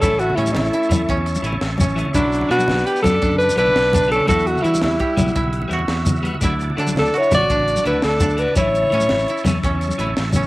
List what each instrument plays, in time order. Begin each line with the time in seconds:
Already playing: koto D4 F#4, tonewheel organ A5
0.01 fingered electric bass A1, clean electric guitar E3 A3 C#4, tenor saxophone C#4, koto E4, alto saxophone A4, tonewheel organ E5 C#6, kick, closed hi-hat, shekere
0.05 high conga
0.19 tenor saxophone A3, alto saxophone F#4, closed hi-hat, shekere
0.30 low conga
0.36 fingered electric bass A2, clean electric guitar E3 C#4, koto C#4, alto saxophone E4, muted clean electric guitar stroke, closed hi-hat, low conga
0.41 tenor saxophone G3
0.46 high conga, low conga, shekere
0.53 fingered electric bass A1, alto saxophone E4, snare, closed hi-hat, low conga
0.59 tenor saxophone A3
0.65 shekere
0.73 koto E4, closed hi-hat
0.83 shekere
0.89 fingered electric bass E2, clean electric guitar E3 A3 C#4, closed hi-hat, high conga, low conga, shekere
1.09 fingered electric bass E2, koto C#4, kick, closed hi-hat, shekere
1.17 low conga
1.26 closed hi-hat, shekere
1.35 high conga, shekere
1.42 fingered electric bass A1, clean electric guitar E3 A3 C#4, koto E4, closed hi-hat
1.52 low conga
1.61 fingered electric bass A1, snare, closed hi-hat, shekere
1.78 koto C#4, closed hi-hat, high conga, low conga, shekere
1.96 clean electric guitar E3 A3 C#4, closed hi-hat, shekere
2.05 low conga
2.14 fingered electric bass B1, clean electric guitar F#3 B3 D4, tenor saxophone F#3, alto saxophone D4, koto E4, tonewheel organ F#5 B5 D6, kick, closed hi-hat, high conga, shekere
2.32 closed hi-hat, shekere
2.41 low conga
2.49 fingered electric bass B2, clean electric guitar F#3 B3 D4, tenor saxophone B3, koto D4, alto saxophone F#4, closed hi-hat, low conga
2.59 high conga, low conga, shekere
2.68 fingered electric bass B1, snare, closed hi-hat, low conga
2.78 shekere
2.86 tenor saxophone B3, alto saxophone G4, koto B4, closed hi-hat
2.96 shekere
3.02 fingered electric bass F#2, clean electric guitar F#3 B3 D4, tenor saxophone D4, alto saxophone A4, snare, closed hi-hat, high conga, low conga, shekere
3.22 fingered electric bass F#2, koto D4, kick, closed hi-hat, shekere
3.32 low conga
3.38 alto saxophone B4, closed hi-hat, shekere
3.43 tenor saxophone D4
3.49 high conga, shekere
3.56 fingered electric bass B1, clean electric guitar F#3 B3 D4, tenor saxophone D4, koto E4, alto saxophone B4, closed hi-hat
3.66 low conga
3.76 fingered electric bass B1, snare, closed hi-hat, low conga, shekere
3.93 koto D4, closed hi-hat, high conga, low conga, shekere
4.03 shekere
4.08 clean electric guitar F#3 B3 D4, alto saxophone A4, closed hi-hat
4.12 tenor saxophone C#4, shekere
4.20 low conga
4.26 fingered electric bass E2, clean electric guitar G3 B3 E4 F#4, tenor saxophone E4, koto F#4, alto saxophone A4, tonewheel organ E5 F#5 E6, kick, closed hi-hat, high conga, shekere
4.38 low conga, shekere
4.47 alto saxophone F#4, closed hi-hat, low conga
4.51 tenor saxophone A3
4.56 low conga, shekere
4.61 fingered electric bass E3, clean electric guitar G3 B3 E4 F#4, alto saxophone E4, closed hi-hat
4.65 tenor saxophone G3, koto E4, shekere
4.74 high conga, shekere
4.82 fingered electric bass E2, tenor saxophone G3, alto saxophone E4, snare, closed hi-hat, low conga
5.00 koto G4, kick, closed hi-hat, low conga
5.17 fingered electric bass B1, clean electric guitar G3 B3 E4 F#4, closed hi-hat, high conga, low conga, shekere
5.28 shekere
5.36 fingered electric bass B1, koto E4, kick, closed hi-hat, shekere
5.44 low conga
5.53 closed hi-hat
5.62 high conga, low conga
5.68 fingered electric bass E2, clean electric guitar G3 B3 E4 F#4, closed hi-hat
5.73 koto F#4
5.79 low conga
5.88 fingered electric bass E2, snare, closed hi-hat, shekere
6.06 closed hi-hat, high conga, low conga, shekere
6.16 shekere
6.23 clean electric guitar G3 B3 F#4, muted clean electric guitar stroke, closed hi-hat, low conga
6.34 low conga
6.41 fingered electric bass D2, clean electric guitar A3 D4 F#4, koto E4, kick, closed hi-hat, high conga, shekere
6.45 tonewheel organ A5 D6
6.60 closed hi-hat, shekere
6.70 low conga
6.77 fingered electric bass D3, clean electric guitar A3 D4 F#4, koto D4, closed hi-hat, low conga
6.87 high conga, low conga, shekere
6.95 fingered electric bass D2, snare, closed hi-hat, low conga
6.99 tenor saxophone D4, alto saxophone A4
7.05 shekere
7.14 koto F#4, closed hi-hat
7.18 tenor saxophone E4, alto saxophone C#5
7.23 shekere
7.31 fingered electric bass A1, clean electric guitar A3 D4 F#4, alto saxophone D5, closed hi-hat, high conga, low conga, shekere
7.37 tenor saxophone F#4
7.50 fingered electric bass A1, koto D4, kick, closed hi-hat, shekere
7.59 low conga
7.68 closed hi-hat, shekere
7.76 high conga, shekere
7.84 fingered electric bass D2, clean electric guitar A3 D4 F#4, koto E4, alto saxophone B4, closed hi-hat
7.90 tenor saxophone D4, low conga
8.02 fingered electric bass D2, alto saxophone A4, snare, closed hi-hat, low conga, shekere
8.08 tenor saxophone D4
8.20 koto D4, closed hi-hat, high conga, low conga, shekere
8.30 shekere
8.37 clean electric guitar A3 D4, tenor saxophone D4, alto saxophone B4, closed hi-hat, shekere
8.41 clean electric guitar F#4
8.48 low conga
8.55 fingered electric bass A1, clean electric guitar E3 A3 C#4, koto E4, alto saxophone C#5, tonewheel organ E5 C#6, kick, closed hi-hat, high conga, shekere
8.61 tenor saxophone E4
8.75 closed hi-hat, shekere
8.83 low conga
8.90 fingered electric bass A2, clean electric guitar E3 A3 C#4, koto C#4, closed hi-hat, low conga
9.00 high conga, low conga, shekere
9.09 fingered electric bass A1, snare, closed hi-hat, low conga
9.19 shekere
9.28 koto E4, closed hi-hat
9.37 shekere
9.44 fingered electric bass E2, clean electric guitar E3 A3 C#4, snare, closed hi-hat, high conga, low conga, shekere
9.63 fingered electric bass E2, koto C#4, kick, closed hi-hat, shekere
9.71 low conga
9.81 closed hi-hat, shekere
9.88 high conga, shekere
9.98 fingered electric bass A1, clean electric guitar E3 A3 C#4, koto E4, closed hi-hat
10.07 low conga
10.17 fingered electric bass A1, snare, closed hi-hat, shekere
10.33 koto C#4, closed hi-hat, high conga, low conga, shekere
10.43 shekere